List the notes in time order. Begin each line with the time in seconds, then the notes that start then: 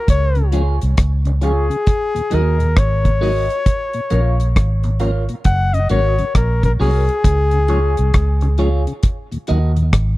0.08 C#2 C#5, kick, closed hi-hat
0.35 C#3, closed hi-hat
0.52 F3 G#3 C#4 F4 G#4 C#5, closed hi-hat
0.81 C2, closed hi-hat
0.97 C#2, kick, cross-stick, closed hi-hat
1.25 C#3, muted clean electric guitar stroke, closed hi-hat
1.41 F3 G#3 C#4 F4 G#4 C#5, closed hi-hat
1.70 C#3, closed hi-hat
1.87 kick, closed hi-hat
2.15 D#2 A#2, closed hi-hat
2.30 D#2 F#3 A#3 D#4 F#4 A#4 D#5, closed hi-hat
2.59 D#2 A#2, closed hi-hat
2.77 G#1 C#5, kick, cross-stick, closed hi-hat
3.04 D#2 A#2, kick, closed hi-hat
3.21 F#3 A#3 D#4 F#4 A#4 D#5, open hi-hat
3.50 closed hi-hat
3.66 kick, closed hi-hat
3.93 A#2, closed hi-hat
4.10 A#1 F3 A#3 C#4 F4 A#4 C#5, closed hi-hat
4.40 closed hi-hat
4.56 G#1, kick, cross-stick, closed hi-hat
4.83 A#2, muted clean electric guitar stroke, closed hi-hat
5.00 F3 A#3 C#4 F4 A#4 C#5, closed hi-hat
5.29 A#2, closed hi-hat
5.44 F#1 F#5, kick, closed hi-hat
5.73 F#2 C#3 D#5, closed hi-hat
5.89 G#1 F#3 A#3 C#4 F#4 A#4 C#5, closed hi-hat
6.19 F#2 C#3, closed hi-hat
6.35 A#1 A#4, kick, cross-stick, closed hi-hat
6.63 F#2 C#3 A#4, kick, closed hi-hat
6.80 C2 F#3 A#3 C#4 F#4 G#4 A#4 C#5, open hi-hat
7.09 closed hi-hat
7.24 C#2, kick, closed hi-hat
7.51 C#3, closed hi-hat
7.68 F3 G#3 C#4 F4 G#4 C#5, closed hi-hat
7.97 C2, closed hi-hat
8.14 C#2, kick, cross-stick, closed hi-hat
8.41 C#3, muted clean electric guitar stroke, closed hi-hat
8.58 F3 G#3 C#4 F4 G#4 C#5, closed hi-hat
8.87 C#3, closed hi-hat
9.03 kick, closed hi-hat
9.32 D#2 A#2, closed hi-hat
9.47 D#2 F#3 A#3 D#4 F#4 A#4 D#5, closed hi-hat
9.76 D#2 A#2, closed hi-hat
9.93 G#1, kick, cross-stick, closed hi-hat